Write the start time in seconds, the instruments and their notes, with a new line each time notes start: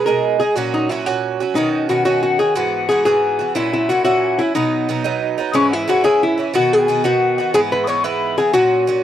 0.06 bouzouki B2 G#3 D#4 G#4, hollow-body jazz guitar A#4
0.40 bouzouki G#3 D#4 G#4, hollow-body jazz guitar G#4
0.56 bouzouki A#2 F#3 C#4 F#4, hollow-body jazz guitar F#4
0.74 hollow-body jazz guitar D#4
0.89 bouzouki A#2 F#3 C#4 F#4, hollow-body jazz guitar E4
1.06 bouzouki A#2 F#3 C#4 F#4, hollow-body jazz guitar F#4
1.40 bouzouki F#3 C#4 F#4
1.55 bouzouki B2 D#3 C#4 F#4, hollow-body jazz guitar D#4, tin whistle D#5
1.89 bouzouki B2 D#3 C#4 F#4, hollow-body jazz guitar F#4, tin whistle F#5
2.05 bouzouki B2 D#3 C#4 F#4, hollow-body jazz guitar F#4, tin whistle F#5
2.23 hollow-body jazz guitar F#4, tin whistle F#5
2.39 bouzouki D#3 C#4 F#4, hollow-body jazz guitar G#4, tin whistle G#5
2.56 bouzouki G#2 E3 B3 F#4, hollow-body jazz guitar F#4, tin whistle F#5
2.75 tin whistle F#5
2.89 bouzouki G#2 E3 B3 F#4, hollow-body jazz guitar G#4
3.05 bouzouki G#2 E3 B3 F#4, hollow-body jazz guitar G#4, tin whistle G#5
3.39 bouzouki E3 B3 F#4
3.55 bouzouki A#2 F#3 C#4 E4, hollow-body jazz guitar E4, tin whistle E5
3.73 hollow-body jazz guitar E4
3.89 bouzouki A#2 F#3 C#4 E4, hollow-body jazz guitar F#4, tin whistle F#5
4.05 bouzouki A#2 F#3 C#4 E4, hollow-body jazz guitar F#4, tin whistle F#5
4.39 bouzouki F#3 C#4 E4, hollow-body jazz guitar E4, tin whistle E5
4.55 bouzouki B2 F#3 B3 D#4, hollow-body jazz guitar D#4, tin whistle D#5
4.89 bouzouki B2 F#3 B3 D#4
5.04 bouzouki B2 F#3 B3 D#4
5.38 bouzouki F#3 B3 D#4
5.51 bouzouki G#2 E3 C#4 E4, hollow-body jazz guitar C#4, tin whistle D#6
5.55 tin whistle C#6
5.69 hollow-body jazz guitar E4, tin whistle F#5
5.74 tin whistle E5
5.88 bouzouki G#2 E3 C#4 E4, hollow-body jazz guitar F#4, tin whistle F#5
6.04 bouzouki G#2 E3 C#4 E4, hollow-body jazz guitar G#4, tin whistle G#5
6.23 hollow-body jazz guitar E4, tin whistle E5
6.38 bouzouki E3 C#4 E4
6.54 bouzouki B2 D#3 B3 F#4, hollow-body jazz guitar F#4, tin whistle F#5
6.73 hollow-body jazz guitar G#4, tin whistle G#5
6.88 bouzouki B2 D#3 B3 F#4
7.04 bouzouki B2 D#3 B3 F#4, hollow-body jazz guitar F#4, tin whistle F#5
7.38 bouzouki D#3 B3 F#4
7.54 bouzouki G#2 E3 B3 E4, hollow-body jazz guitar G#4, tin whistle G#5
7.72 hollow-body jazz guitar B4, tin whistle B5
7.84 bouzouki G#2, tin whistle C#6 D#6
7.88 bouzouki E3 B3 E4, hollow-body jazz guitar C#5
8.03 bouzouki G#2 E3 B3 E4, hollow-body jazz guitar B4, tin whistle B5
8.38 bouzouki E3 B3 E4, hollow-body jazz guitar G#4, tin whistle G#5
8.53 bouzouki A#2 F#3 C#4 F#4, hollow-body jazz guitar F#4, tin whistle F#5
8.87 bouzouki A#2 F#3 C#4 F#4